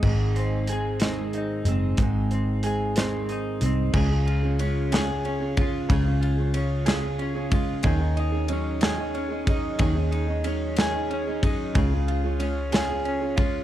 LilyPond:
<<
  \new Staff \with { instrumentName = "Clean electric guitar" } { \time 6/8 \key des \major \tempo 4. = 61 aes,8 c'8 aes'8 c'8 ees'8 c'8 | aes,8 c'8 aes'8 c'8 ees'8 c'8 | <des aes'>8 f'8 des'8 aes'8 des'8 f'8 | <des aes'>8 f'8 des'8 aes'8 des'8 f'8 |
<ees aes'>8 ees'8 des'8 aes'8 des'8 ees'8 | <ees aes'>8 ees'8 des'8 aes'8 des'8 ees'8 | <des aes'>8 f'8 des'8 aes'8 des'8 f'8 | }
  \new Staff \with { instrumentName = "Steel-string acoustic guitar" } { \time 6/8 \key des \major <aes, ees aes c' ees' aes'>4 <aes c' ees' aes'>8 <aes, ees aes c' ees' aes'>4 <aes c' ees' aes'>8 | <aes, ees aes c' ees' aes'>4 <aes c' ees' aes'>8 <aes, ees aes c' ees' aes'>4 <aes c' ees' aes'>8 | <des aes des' f' aes'>16 <des' f' aes'>8 <des' f' aes'>16 <aes des' f' aes'>8 <des aes des' f' aes'>16 <des' f' aes'>8 <des' f' aes'>16 <aes des' f' aes'>8 | <des aes des' f' aes'>16 <des' f' aes'>8 <des' f' aes'>16 <aes des' f' aes'>8 <des aes des' f' aes'>16 <des' f' aes'>8 <des' f' aes'>16 <aes des' f' aes'>8 |
<ees ges des' ees' aes'>16 <des' ees' aes'>8 <des' ees' aes'>16 <ges des' ees' aes'>8 <ees ges des' ees' aes'>16 <des' ees' aes'>8 <des' ees' aes'>16 <ges des' ees' aes'>8 | <ees ges des' ees' aes'>16 <des' ees' aes'>8 <des' ees' aes'>16 <ges des' ees' aes'>8 <ees ges des' ees' aes'>16 <des' ees' aes'>8 <des' ees' aes'>16 <ges des' ees' aes'>8 | <des aes des' f' aes'>16 <des' f' aes'>8 <des' f' aes'>16 <aes des' f' aes'>8 <des aes des' f' aes'>16 <des' f' aes'>8 <des' f' aes'>16 <aes des' f' aes'>8 | }
  \new Staff \with { instrumentName = "Fingered electric bass" } { \clef bass \time 6/8 \key des \major aes,,2~ aes,,8 ges,,8 | aes,,2~ aes,,8 c,8 | des,2. | des,2. |
ees,2. | ees,2. | des,2. | }
  \new DrumStaff \with { instrumentName = "Drums" } \drummode { \time 6/8 <cymc bd>8 hh8 hh8 <hh sn>8 hh8 hh8 | <hh bd>8 hh8 hh8 <hh sn>8 hh8 hh8 | <cymc bd>8 cymr8 cymr8 <cymr sn>8 cymr8 <bd cymr>8 | <bd cymr>8 cymr8 cymr8 <cymr sn>8 cymr8 <bd cymr>8 |
<bd cymr>8 cymr8 cymr8 <cymr sn>8 cymr8 <bd cymr>8 | <bd cymr>8 cymr8 cymr8 <cymr sn>8 cymr8 <bd cymr>8 | <bd cymr>8 cymr8 cymr8 <cymr sn>8 cymr8 <bd cymr>8 | }
>>